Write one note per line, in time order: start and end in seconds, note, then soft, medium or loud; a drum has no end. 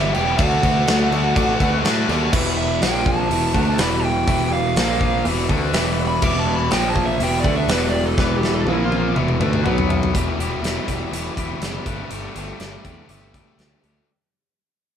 0.00 0.11 G1 loud
0.00 0.13 E2 medium
0.00 0.14 B2 loud
0.00 0.14 E3 loud
0.00 0.14 G3 medium
0.00 0.15 B3 loud
0.00 0.10 G4 medium
0.00 0.15 G4 loud
0.00 0.10 B4 medium
0.00 0.10 D5 medium
0.00 0.12 E5 loud
0.14 0.35 E1 loud
0.14 0.38 E2 medium
0.14 0.38 B2 medium
0.14 0.38 E3 medium
0.14 0.38 G3 medium
0.14 0.38 B3 medium
0.14 0.34 G4 medium
0.14 0.38 G4 loud
0.14 0.34 B4 medium
0.14 0.34 E5 medium
0.14 0.37 G5 loud
0.14 crash medium
0.38 0.59 D2 medium
0.38 0.63 D3 loud
0.38 0.63 A3 medium
0.38 0.64 D4 loud
0.38 0.59 F#4 medium
0.38 0.64 F#4 loud
0.38 0.59 A4 medium
0.38 0.59 D5 loud
0.38 1.80 F#5 loud
0.38 kick loud
0.38 crash medium
0.63 0.83 D2 medium
0.63 0.87 D3 loud
0.63 0.87 A3 medium
0.63 0.87 D4 loud
0.63 0.83 F#4 medium
0.63 0.88 F#4 medium
0.63 0.83 A4 medium
0.63 0.83 B4 medium
0.63 kick medium
0.63 crash medium
0.87 1.08 D2 medium
0.87 1.11 D3 medium
0.87 1.12 A3 loud
0.87 1.12 D4 loud
0.87 1.07 F#4 medium
0.87 1.12 F#4 loud
0.87 1.07 A4 medium
0.87 1.07 D5 medium
0.87 snare loud
0.87 crash medium
1.11 1.31 D2 medium
1.11 1.35 D3 medium
1.11 1.35 A3 medium
1.11 1.35 D4 medium
1.11 1.31 F#4 medium
1.11 1.35 F#4 medium
1.11 1.31 A4 medium
1.11 1.31 D5 loud
1.11 crash medium
1.35 1.56 A1 medium
1.35 1.59 D3 loud
1.35 1.60 A3 loud
1.35 1.60 D4 loud
1.35 1.55 F#4 loud
1.35 1.61 F#4 loud
1.35 1.55 A4 loud
1.35 1.55 D5 loud
1.35 kick loud
1.35 crash medium
1.60 1.80 D2 medium
1.60 1.83 D3 medium
1.60 1.83 A3 medium
1.60 1.84 D4 medium
1.60 1.79 F#4 medium
1.60 1.84 F#4 medium
1.60 1.80 A4 medium
1.60 1.80 B4 loud
1.60 kick medium
1.60 crash medium
1.83 2.04 A2 medium
1.83 2.07 D3 medium
1.83 2.08 A3 medium
1.83 2.08 D4 medium
1.83 2.03 F#4 medium
1.83 2.08 F#4 loud
1.83 2.04 A4 medium
1.83 2.03 E5 medium
1.83 snare loud
1.83 crash medium
2.08 2.28 D#2 medium
2.08 2.31 D3 medium
2.08 2.32 A3 medium
2.08 2.32 D4 medium
2.08 2.28 F#4 medium
2.08 2.32 F#4 medium
2.08 2.28 A4 medium
2.08 2.28 D5 loud
2.08 snare soft
2.08 crash medium
2.32 2.78 E1 medium
2.32 2.81 E2 medium
2.32 2.81 B2 medium
2.32 2.81 E3 loud
2.32 2.52 G4 loud
2.32 2.52 B4 loud
2.32 2.52 E5 loud
2.32 kick loud
2.32 crash loud
2.56 2.76 G4 medium
2.56 2.76 B4 medium
2.56 2.76 E5 loud
2.56 2.81 E5 medium
2.81 3.26 A#1 medium
2.81 3.29 A#2 loud
2.81 3.30 F3 loud
2.81 3.30 A#3 loud
2.81 3.01 F4 medium
2.81 3.01 A#4 medium
2.81 3.01 F5 medium
2.81 3.06 G5 medium
2.81 snare loud
2.81 open hi-hat medium
3.06 3.25 F4 medium
3.06 3.25 A#4 medium
3.06 3.25 F5 medium
3.06 3.76 A5 medium
3.06 kick medium
3.30 3.53 E1 medium
3.30 3.54 E2 medium
3.30 3.54 B2 loud
3.30 3.54 E3 loud
3.30 3.50 G4 medium
3.30 3.50 B4 medium
3.30 3.50 E5 medium
3.30 open hi-hat medium
3.54 3.77 D2 medium
3.54 3.78 D3 medium
3.54 3.78 A3 medium
3.54 3.78 D4 loud
3.54 3.74 G4 medium
3.54 3.74 B4 medium
3.54 3.74 F#5 medium
3.54 kick medium
3.78 4.24 E1 medium
3.78 4.27 E2 medium
3.78 4.27 B2 medium
3.78 4.27 E3 loud
3.78 3.98 G4 medium
3.78 3.98 B4 medium
3.78 3.98 D5 loud
3.78 4.04 B5 medium
3.78 snare loud
3.78 open hi-hat medium
4.03 4.22 G4 medium
4.03 4.23 B4 medium
4.03 4.23 E5 medium
4.03 4.51 G5 medium
4.27 4.73 E1 medium
4.27 4.76 E2 medium
4.27 4.77 B2 loud
4.27 4.77 E3 loud
4.27 4.47 G4 medium
4.27 4.47 B4 medium
4.27 4.47 E5 loud
4.27 kick loud
4.27 open hi-hat medium
4.52 4.71 G4 medium
4.52 4.71 B4 medium
4.52 4.71 D5 loud
4.52 5.23 F5 medium
4.76 5.22 A#1 medium
4.76 5.25 A#2 medium
4.76 5.25 F3 loud
4.76 5.25 A#3 loud
4.76 4.96 F4 medium
4.76 4.96 A#4 medium
4.76 4.96 F5 medium
4.76 snare loud
4.76 open hi-hat medium
5.01 5.20 F4 medium
5.01 5.20 A#4 medium
5.01 5.20 F5 medium
5.01 kick medium
5.25 5.48 E1 medium
5.25 5.49 E2 loud
5.25 5.49 B2 loud
5.25 5.49 E3 loud
5.25 5.44 G4 medium
5.25 5.44 B4 medium
5.25 5.44 E5 loud
5.25 open hi-hat medium
5.49 5.72 D2 loud
5.49 5.73 D3 medium
5.49 5.73 A3 medium
5.49 5.74 D4 loud
5.49 5.69 G4 medium
5.49 5.69 B4 medium
5.49 5.69 E5 medium
5.49 kick medium
5.73 6.19 E1 medium
5.73 6.21 E2 medium
5.73 6.21 B2 medium
5.73 6.22 E3 loud
5.73 5.93 G4 loud
5.73 5.93 B4 loud
5.73 5.93 E5 loud
5.73 snare loud
5.73 open hi-hat medium
5.99 6.18 G4 medium
5.99 6.18 B4 medium
5.99 6.18 F#5 medium
6.08 6.23 B5 medium
6.22 6.68 E1 medium
6.22 6.70 E2 loud
6.22 6.71 B2 medium
6.22 6.71 E3 loud
6.22 6.42 G4 medium
6.22 6.42 B4 medium
6.22 6.42 E5 loud
6.22 6.39 D6 medium
6.22 kick loud
6.22 crash loud
6.39 6.55 A5 medium
6.47 6.66 G4 loud
6.47 6.66 B4 medium
6.47 6.67 D5 loud
6.56 6.71 B5 medium
6.71 7.17 A#1 medium
6.71 7.19 A#2 medium
6.71 7.20 F3 loud
6.71 7.20 A#3 loud
6.71 6.91 F4 medium
6.71 6.91 A#4 medium
6.71 6.91 F5 medium
6.71 6.89 G5 loud
6.71 snare loud
6.71 open hi-hat medium
6.89 7.04 A5 medium
6.95 7.15 F4 medium
6.95 7.15 A#4 medium
6.95 7.15 F5 medium
6.95 kick medium
7.06 7.21 E5 medium
7.19 7.43 E1 medium
7.19 7.44 E2 loud
7.19 7.44 B2 loud
7.19 7.44 E3 loud
7.19 7.39 G4 medium
7.19 7.39 B4 medium
7.19 7.39 E5 medium
7.19 7.38 G5 loud
7.19 open hi-hat medium
7.40 7.54 D5 medium
7.44 7.67 D2 loud
7.44 7.68 D3 loud
7.44 7.68 A3 medium
7.44 7.69 D4 medium
7.44 7.64 G4 medium
7.44 7.64 B4 medium
7.44 7.64 E5 medium
7.44 kick medium
7.57 7.71 E5 medium
7.68 8.14 E1 loud
7.68 8.17 E2 medium
7.68 8.17 B2 medium
7.68 8.17 E3 loud
7.68 7.88 G4 loud
7.68 7.89 B4 medium
7.68 7.86 B4 medium
7.68 7.88 D5 loud
7.68 snare loud
7.68 open hi-hat medium
7.89 8.03 D5 medium
7.93 8.13 G4 medium
7.93 8.13 B4 medium
7.93 8.13 G5 medium
8.06 8.20 A4 medium
8.18 8.63 E1 medium
8.18 8.66 E2 medium
8.18 8.67 B2 loud
8.18 8.67 E3 loud
8.18 8.38 G4 medium
8.18 8.38 B4 medium
8.18 8.35 B4 loud
8.18 8.38 D5 loud
8.18 kick loud
8.18 snare medium
8.38 8.54 G4 medium
8.42 8.62 G4 loud
8.42 8.62 B4 medium
8.42 8.62 E5 medium
8.42 snare medium
8.54 8.68 A4 medium
8.66 9.12 A#1 loud
8.66 9.15 A#2 medium
8.66 9.15 F3 loud
8.66 9.15 A#3 loud
8.66 8.87 F4 medium
8.66 8.87 A#4 medium
8.66 8.87 F5 medium
8.66 high tom medium
8.71 8.85 E4 loud
8.85 9.16 F4 medium
8.90 9.11 F4 medium
8.90 9.11 A#4 medium
8.90 9.10 F5 medium
8.90 high tom medium
9.15 9.39 E1 medium
9.15 9.40 E2 loud
9.15 9.40 B2 loud
9.15 9.40 E3 loud
9.15 9.35 G4 medium
9.15 9.35 B4 medium
9.15 9.35 E5 medium
9.15 mid tom medium
9.28 mid tom medium
9.39 9.63 D2 loud
9.39 9.64 D3 medium
9.39 9.64 A3 medium
9.39 9.64 D4 loud
9.39 9.59 G4 medium
9.39 9.59 B4 medium
9.39 9.59 E5 medium
9.39 mid tom loud
9.53 mid tom medium
9.63 10.11 B1 loud
9.63 10.13 B2 medium
9.63 10.14 F#3 medium
9.63 10.14 B3 medium
9.63 9.84 F#4 loud
9.63 9.84 B4 loud
9.63 9.84 F#5 loud
9.63 mid tom medium
9.78 floor tom medium
9.88 10.09 F#4 medium
9.88 10.09 B4 medium
9.88 10.09 E5 medium
9.88 floor tom loud
10.03 floor tom medium
10.14 10.30 E1 medium
10.14 10.37 E2 medium
10.14 10.38 B2 medium
10.14 10.38 E3 medium
10.14 10.39 G3 loud
10.14 10.39 B3 medium
10.14 10.39 E4 medium
10.14 10.40 G4 medium
10.14 kick loud
10.14 closed hi-hat medium
10.38 10.54 E1 medium
10.38 10.62 E2 medium
10.38 10.61 B2 medium
10.38 10.62 E3 medium
10.38 10.64 G3 medium
10.38 10.62 B3 medium
10.38 10.63 E4 medium
10.38 10.64 G4 medium
10.38 closed hi-hat medium
10.63 10.78 E1 medium
10.63 10.86 E2 medium
10.63 10.86 B2 loud
10.63 10.86 E3 medium
10.63 10.88 G3 loud
10.63 10.87 B3 medium
10.63 10.87 E4 loud
10.63 10.89 G4 loud
10.63 snare medium
10.63 closed hi-hat medium
10.87 11.03 E1 medium
10.87 11.10 E2 medium
10.87 11.10 B2 medium
10.87 11.11 E3 medium
10.87 11.12 G3 medium
10.87 11.12 B3 medium
10.87 11.11 E4 medium
10.87 11.13 G4 medium
10.87 kick medium
10.87 closed hi-hat medium
11.11 11.28 E1 medium
11.11 11.35 E2 medium
11.11 11.35 B2 medium
11.11 11.36 E3 loud
11.11 11.37 G3 loud
11.11 11.37 B3 medium
11.11 11.37 E4 medium
11.11 11.38 G4 loud
11.11 closed hi-hat medium
11.36 11.52 E1 medium
11.36 11.60 E2 medium
11.36 11.61 B2 medium
11.36 11.61 E3 medium
11.36 11.62 G3 medium
11.36 11.61 B3 medium
11.36 11.62 E4 medium
11.36 11.63 G4 medium
11.36 kick medium
11.36 closed hi-hat medium
11.62 11.77 F#1 medium
11.62 11.85 E2 medium
11.62 11.85 B2 medium
11.62 11.85 E3 medium
11.62 11.86 G3 medium
11.62 11.85 B3 loud
11.62 11.86 E4 medium
11.62 11.86 G4 medium
11.62 snare medium
11.62 closed hi-hat medium
11.86 12.02 G1 medium
11.86 12.09 G3 loud
11.86 12.09 A3 medium
11.86 12.10 D4 loud
11.86 12.10 G4 medium
11.86 kick medium
11.86 closed hi-hat medium
12.10 12.27 G1 medium
12.10 12.33 G3 medium
12.10 12.34 A3 medium
12.10 12.34 D4 medium
12.10 12.35 G4 medium
12.10 closed hi-hat medium
12.35 12.51 G1 medium
12.35 12.58 G3 medium
12.35 12.58 A3 medium
12.35 12.59 D4 medium
12.35 12.59 G4 medium
12.35 closed hi-hat medium
12.59 12.76 G1 medium
12.59 12.83 G3 medium
12.59 12.83 A3 medium
12.59 12.84 D4 medium
12.59 12.84 G4 loud
12.59 snare medium
12.59 closed hi-hat medium
12.84 13.01 E2 medium
12.84 13.08 G3 medium
12.84 13.08 A3 medium
12.84 13.09 D4 medium
12.84 13.09 G4 medium
12.84 kick medium
12.84 closed hi-hat soft
13.09 13.40 G1 medium
13.09 13.33 G3 medium
13.09 13.33 A3 medium
13.09 13.34 D4 medium
13.09 13.34 G4 loud
13.09 closed hi-hat medium
13.34 13.57 G3 medium
13.34 13.58 A3 medium
13.34 13.58 D4 medium
13.34 13.58 G4 medium
13.34 kick medium
13.34 closed hi-hat medium
13.58 13.74 D2 medium
13.58 13.83 G3 medium
13.58 13.84 A3 medium
13.58 13.84 D4 medium
13.58 13.85 G4 medium
13.58 snare medium
13.58 closed hi-hat medium
13.84 13.99 D2 medium
13.84 14.07 G3 medium
13.84 14.08 A3 medium
13.84 14.08 D4 medium
13.84 14.08 G4 medium
13.84 closed hi-hat soft